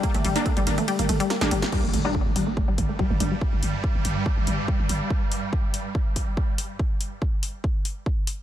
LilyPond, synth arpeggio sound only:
\new Staff \with { instrumentName = "Synth arpeggio sound" } { \time 4/4 \key g \minor \tempo 4 = 142 bes16 a16 g16 bes16 a16 g16 bes16 a16 g16 bes16 a16 g16 bes16 a16 g16 bes16 | g16 bes16 a16 g16 bes16 a16 g16 bes16 a16 g16 bes16 a16 g16 bes16 a16 g16 | r1 | r1 |
r1 | }